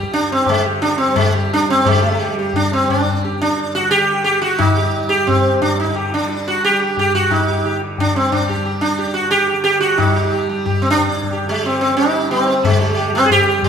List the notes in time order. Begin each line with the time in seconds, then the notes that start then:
Already playing: D3 G3 G4
0.03 tabla ke
0.09 G2, tabla te
0.13 D4
0.29 C4, tabla te
0.46 G#3, tabla na, tabla ge
0.58 D3
0.65 G4
0.81 D4, tabla te
0.98 C4, tabla te
1.08 G3
1.16 G#3, tabla na, tabla ge
1.35 G4
1.50 D4, tabla te
1.56 G3
1.68 C4, tabla te
1.85 D3 G#3 G4, tabla na, tabla ge
2.02 tabla te
2.19 G4, tabla na
2.33 G3
2.37 G4, tabla te
2.53 D4, tabla tin, tabla ge
2.72 C4, tabla na
2.82 G3
2.89 D4, tabla na, tabla ge
3.06 tabla ge
3.23 G4, tabla na
3.30 G2
3.41 D4, tabla te
3.57 tabla te
3.75 F#4, tabla te
3.80 D3
3.91 G4, tabla tin
4.09 tabla na
4.24 G3 G4, tabla na
4.42 F#4, tabla te
4.58 D#4, tabla na, tabla ge
4.75 G3 G4, tabla te
4.94 tabla na
5.09 G4, tabla te
5.25 G2 C4, tabla tin, tabla ge
5.44 tabla na
5.62 D4, tabla na, tabla ge
5.74 D3, tabla te
5.80 D#4
5.87 tabla ge
5.96 G4, tabla na
6.12 D4, tabla te
6.21 G3
6.29 tabla te
6.47 F#4, tabla te
6.62 G4, tabla tin
6.69 G3
6.80 G4, tabla na
6.97 G4, tabla na, tabla ge
7.13 G2 F#4, tabla ge
7.31 D#4, tabla na, tabla ge
7.48 G4, tabla te
7.64 D3 G4, tabla na
7.82 tabla te
7.98 D4, tabla tin, tabla ge
8.11 G3
8.15 C4, tabla na
8.32 D4, tabla na, tabla ge
8.49 G4, tabla ge
8.56 G3
8.65 G4, tabla na
8.81 D4, tabla te
8.98 G4, tabla te
9.05 G2
9.14 F#4, tabla te
9.31 G4, tabla tin
9.48 G4, tabla na
9.52 D3
9.64 G4, tabla na
9.81 F#4, tabla te
9.98 G3 D#4, tabla na, tabla ge
10.15 G4, tabla te
10.32 G4, tabla na
10.49 G3 G4, tabla te
10.66 G4, tabla tin, tabla ge
10.82 C4, tabla na
10.90 D4
10.95 G2, tabla na, tabla ge
11.14 tabla te
11.23 tabla ge
11.31 G4, tabla na
11.43 D3, tabla te
11.49 G#3 G4
11.64 C4 G4, tabla te
11.79 C4, tabla te
11.90 G3
11.96 D#4 G4, tabla tin
12.14 tabla na
12.30 C4 G4, tabla na
12.35 G3
12.47 G4, tabla te
12.63 D3 G#3, tabla na, tabla ge
12.80 G4, tabla te
12.97 G4, tabla na
13.10 G3, tabla te
13.15 C4
13.26 G#4
13.30 G4, tabla tin, tabla ge
13.47 G4, tabla na
13.58 G3
13.63 G3, tabla na, tabla ge